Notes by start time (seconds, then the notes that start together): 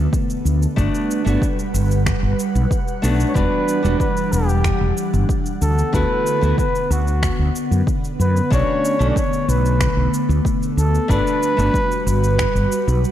Already playing: D3 A3 B3
0.13 kick, shaker
0.30 shaker
0.45 D2, shaker
0.63 shaker
0.76 G1 G3 A3 B3 D4 F#4 B4 F#5, kick, shaker
0.95 shaker
1.11 shaker
1.25 G1 A3 B3 D4 F#4, shaker
1.42 kick, shaker
1.59 shaker
1.74 G1, shaker
1.91 shaker
2.06 finger snap, kick, shaker
2.23 G1
2.39 shaker
2.55 B1, shaker
2.71 kick, shaker
2.88 shaker
3.02 B1 A3 B3 D4 F#4, shaker
3.20 shaker
3.29 C#5
3.34 E1 E3 G3 B3 D4 F#4 B4, kick, shaker
3.68 shaker
3.83 E1 G3 B3 D4 F#4, shaker
4.00 B4, kick, shaker
4.17 shaker
4.32 E1 G4, shaker
4.49 shaker
4.64 finger snap, kick, shaker
4.81 E1
4.97 shaker
5.14 G1, shaker
5.29 kick, shaker
5.46 shaker
5.62 D2 D3 B3 A4, shaker
5.78 shaker
5.93 D2 A3 B3 E4 F#4 B4, kick, shaker
6.27 shaker
6.41 D2 A3 B3 E4 F#4, shaker
6.58 B4, kick, shaker
6.75 shaker
6.90 D2 F#4, shaker
7.08 shaker
7.23 finger snap, kick, shaker
7.39 D2
7.56 shaker
7.71 F#2, shaker
7.87 kick, shaker
8.04 shaker
8.19 F#2 B4, shaker
8.37 shaker
8.50 B1 D3 A3 C#4 D4 F#4 C#5, kick, shaker
8.85 shaker
8.99 B1 A3 C#4 D4 F#4, shaker
9.11 D5
9.16 C#5, kick, shaker
9.33 shaker
9.48 B1 B4, shaker
9.66 shaker
9.80 finger snap, kick, shaker
9.97 B1
10.14 shaker
10.29 D2, shaker
10.45 kick, shaker
10.63 shaker
10.77 D2 A4, shaker
10.95 shaker
11.08 G1 G3 A3 B3 D4 F#4 B4, kick, shaker
11.27 shaker
11.43 shaker
11.57 G1 A3 B3 D4 F#4, shaker
11.74 kick, shaker
11.92 shaker
12.06 G1 B4, shaker
12.24 shaker
12.39 finger snap, kick, shaker
12.55 G1, shaker
12.72 shaker
12.88 B1, shaker
13.05 shaker